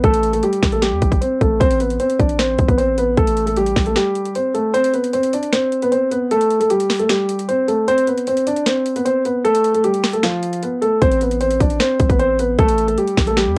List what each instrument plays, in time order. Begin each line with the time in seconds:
0.04 808-style bass A1, grand piano A3 A4, kick, closed hi-hat
0.14 closed hi-hat
0.23 closed hi-hat
0.33 grand piano A3 A4, closed hi-hat
0.43 grand piano G3 G4, closed hi-hat
0.53 closed hi-hat
0.63 808-style bass A1, finger snap, kick, snare, open hi-hat
0.72 grand piano A3 A4, closed hi-hat
0.82 grand piano G3 G4, finger snap, snare, closed hi-hat
0.92 808-style bass E2
1.02 808-style bass A1, kick, closed hi-hat
1.12 kick, closed hi-hat
1.21 grand piano C4 C5, closed hi-hat
1.41 808-style bass A1, grand piano A3 A4, kick, closed hi-hat
1.60 808-style bass A1, grand piano C4 C5, kick, closed hi-hat
1.71 closed hi-hat
1.80 grand piano B3 B4, closed hi-hat
1.90 closed hi-hat
2.00 grand piano C4 C5, closed hi-hat
2.10 closed hi-hat
2.19 808-style bass A1, grand piano D4 D5, kick, closed hi-hat
2.29 closed hi-hat
2.39 grand piano C4 C5, finger snap, snare, closed hi-hat
2.58 808-style bass A1, kick, closed hi-hat
2.68 808-style bass A1, grand piano B3 B4, kick, closed hi-hat
2.78 grand piano C4 C5, closed hi-hat
2.98 grand piano B3 B4, closed hi-hat
3.17 808-style bass A1, grand piano A3 A4, kick, closed hi-hat
3.27 closed hi-hat
3.37 closed hi-hat
3.46 grand piano A3 A4, closed hi-hat
3.57 grand piano G3 G4, closed hi-hat
3.66 closed hi-hat
3.76 808-style bass A1, finger snap, kick, snare, open hi-hat
3.86 grand piano A3 A4, closed hi-hat
3.96 grand piano G3 G4, finger snap, snare, closed hi-hat
4.15 closed hi-hat
4.25 closed hi-hat
4.35 grand piano C4 C5, closed hi-hat
4.54 grand piano A3 A4, closed hi-hat
4.74 grand piano C4 C5, closed hi-hat
4.84 closed hi-hat
4.93 grand piano B3 B4, closed hi-hat
5.04 closed hi-hat
5.13 grand piano C4 C5, closed hi-hat
5.23 closed hi-hat
5.33 grand piano D4 D5, closed hi-hat
5.43 closed hi-hat
5.53 grand piano C4 C5, finger snap, snare, closed hi-hat
5.72 closed hi-hat
5.82 grand piano B3 B4, closed hi-hat
5.92 grand piano C4 C5, closed hi-hat
6.11 grand piano B3 B4, closed hi-hat
6.31 grand piano A3 A4, closed hi-hat
6.41 closed hi-hat
6.51 closed hi-hat
6.60 grand piano A3 A4, closed hi-hat
6.70 grand piano G3 G4, closed hi-hat
6.80 closed hi-hat
6.90 finger snap, snare, open hi-hat
6.99 grand piano A3 A4, closed hi-hat
7.09 grand piano G3 G4, finger snap, snare, closed hi-hat
7.29 closed hi-hat
7.39 closed hi-hat
7.49 grand piano C4 C5, closed hi-hat
7.68 grand piano A3 A4, closed hi-hat
7.88 grand piano C4 C5, closed hi-hat
7.98 closed hi-hat
8.07 grand piano B3 B4, closed hi-hat
8.18 closed hi-hat
8.27 grand piano C4 C5, closed hi-hat
8.37 closed hi-hat
8.47 grand piano D4 D5, closed hi-hat
8.56 closed hi-hat
8.66 grand piano C4 C5, finger snap, snare, closed hi-hat
8.86 closed hi-hat
8.96 grand piano B3 B4, closed hi-hat
9.05 grand piano C4 C5, closed hi-hat
9.25 grand piano B3 B4, closed hi-hat
9.45 grand piano A3 A4, closed hi-hat
9.55 closed hi-hat
9.64 closed hi-hat
9.74 grand piano A3 A4, closed hi-hat
9.84 grand piano G3 G4, closed hi-hat
9.94 closed hi-hat
10.04 finger snap, snare, open hi-hat
10.13 grand piano A3 A4, closed hi-hat
10.23 grand piano F3 F4, finger snap, snare, closed hi-hat
10.43 closed hi-hat
10.53 closed hi-hat
10.63 grand piano B3 B4, closed hi-hat
10.82 grand piano A3 A4, closed hi-hat
11.02 808-style bass A1, grand piano C4 C5, kick, closed hi-hat
11.12 closed hi-hat
11.21 grand piano B3 B4, closed hi-hat
11.31 closed hi-hat
11.41 grand piano C4 C5, closed hi-hat
11.51 closed hi-hat
11.61 808-style bass A1, grand piano D4 D5, kick, closed hi-hat
11.70 closed hi-hat
11.80 grand piano C4 C5, finger snap, snare, closed hi-hat
12.00 808-style bass A1, kick, closed hi-hat
12.09 grand piano B3 B4, kick, closed hi-hat
12.19 grand piano C4 C5, closed hi-hat
12.39 grand piano B3 B4, closed hi-hat
12.59 808-style bass A1, grand piano A3 A4, kick, closed hi-hat
12.68 closed hi-hat
12.78 closed hi-hat
12.88 grand piano A3 A4, closed hi-hat
12.98 grand piano G3 G4, closed hi-hat
13.08 closed hi-hat
13.17 808-style bass A1, finger snap, kick, snare, open hi-hat
13.27 grand piano A3 A4, closed hi-hat
13.37 grand piano G3 G4, finger snap, snare, closed hi-hat
13.47 808-style bass E2